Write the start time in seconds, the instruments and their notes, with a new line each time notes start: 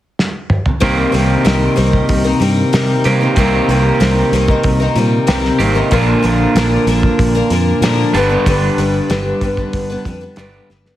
0.19 snare
0.50 mid tom
0.66 floor tom
0.80 fingered electric bass C2, twelve-string acoustic guitar C3 G3 C4 D#4 A#4, clean electric guitar C3 D#3 A#3 C4 G4, kick, open hi-hat
1.12 fingered electric bass C2, twelve-string acoustic guitar G3 C4 D#4 A#4, open hi-hat
1.45 fingered electric bass C2, twelve-string acoustic guitar C3 G3 C4 D#4 A#4, snare, open hi-hat
1.76 fingered electric bass C2, twelve-string acoustic guitar G3 C4 D#4 A#4, open hi-hat
1.93 kick
2.09 fingered electric bass C2, kick, open hi-hat
2.24 twelve-string acoustic guitar C4 D#4 A#4
2.40 fingered electric bass G2, twelve-string acoustic guitar G3 C4 D#4 A#4, open hi-hat
2.73 twelve-string acoustic guitar C3 G3 C4 D#4 A#4, fingered electric bass C3, snare, open hi-hat
3.04 fingered electric bass C3, clean electric guitar C3 D#3 A#3 C4 G4, twelve-string acoustic guitar G3 C4 D#4 A#4, open hi-hat
3.21 twelve-string acoustic guitar C4 D#4 A#4
3.36 fingered electric bass C2, clean electric guitar C3 D#3 A#3 C4 G4, twelve-string acoustic guitar C3 G3 C4 D#4 A#4, kick, open hi-hat
3.68 fingered electric bass C2, twelve-string acoustic guitar G3 C4 D#4, open hi-hat
3.72 twelve-string acoustic guitar A#4
4.00 fingered electric bass C2, twelve-string acoustic guitar C3 G3 C4 D#4 A#4, snare, open hi-hat
4.32 fingered electric bass C2, twelve-string acoustic guitar G3 C4 D#4 A#4, open hi-hat
4.48 twelve-string acoustic guitar C4 D#4 A#4, kick
4.63 fingered electric bass C2, kick, open hi-hat
4.80 twelve-string acoustic guitar C4 D#4 A#4
4.95 fingered electric bass A#2, twelve-string acoustic guitar G3 C4 D#4 A#4, open hi-hat
5.27 fingered electric bass C2, twelve-string acoustic guitar C3 G3 C4 D#4 A#4, snare, open hi-hat
5.45 snare
5.59 fingered electric bass G#1, clean electric guitar C3 D#3 A#3 C4 G4, twelve-string acoustic guitar G3 C4 D#4 A#4, open hi-hat
5.75 twelve-string acoustic guitar C4 D#4 A#4
5.91 fingered electric bass A#1, clean electric guitar A#2 D3 A#3 D4 F4, twelve-string acoustic guitar A#2 D3 F3 A#3 D4 A#4, kick, open hi-hat
6.22 fingered electric bass A#1, twelve-string acoustic guitar F3 A#3 D4 A#4, open hi-hat
6.55 fingered electric bass A#1, twelve-string acoustic guitar A#2 D3 F3 A#3 D4 A#4, snare, open hi-hat
6.86 fingered electric bass A#1, twelve-string acoustic guitar F3 A#3 D4, open hi-hat
6.90 twelve-string acoustic guitar A#4
7.03 kick
7.19 fingered electric bass A#1, kick, open hi-hat
7.35 twelve-string acoustic guitar F3 A#3 D4 A#4
7.50 fingered electric bass F2, twelve-string acoustic guitar F3 A#3 D4 A#4, open hi-hat
7.81 fingered electric bass A#2, twelve-string acoustic guitar A#2 D3 F3 A#3 D4 A#4, snare, open hi-hat
8.13 fingered electric bass G1, clean electric guitar G2 D3 G3 B3 D4 G4, twelve-string acoustic guitar G3 B3 D4, open hi-hat
8.17 twelve-string acoustic guitar B4
8.29 twelve-string acoustic guitar G3 B3 D4 B4
8.46 fingered electric bass G1, twelve-string acoustic guitar G2 D3 G3 B3 D4 B4, kick, open hi-hat
8.77 fingered electric bass G1, twelve-string acoustic guitar G3 B3 D4 B4, open hi-hat
9.10 fingered electric bass G1, twelve-string acoustic guitar G2 D3 G3 B3 D4 B4, snare, open hi-hat
9.41 fingered electric bass G1, twelve-string acoustic guitar G3 B3 D4 B4, kick, open hi-hat
9.57 twelve-string acoustic guitar G3 B3 D4 B4, kick
9.73 fingered electric bass G1, kick, open hi-hat
9.90 twelve-string acoustic guitar G3 B3 D4 B4
10.05 fingered electric bass F2, twelve-string acoustic guitar D4 B4, kick, open hi-hat
10.21 twelve-string acoustic guitar G3 B3 D4 B4
10.36 fingered electric bass G1, clean electric guitar G2 D3 G3 B3 D4 G4, twelve-string acoustic guitar G2 D3 G3 B3 D4, snare, open hi-hat
10.40 twelve-string acoustic guitar B4
10.70 fingered electric bass G1, twelve-string acoustic guitar G3 B3 D4 B4, snare
10.86 twelve-string acoustic guitar G3 B3 D4 B4, snare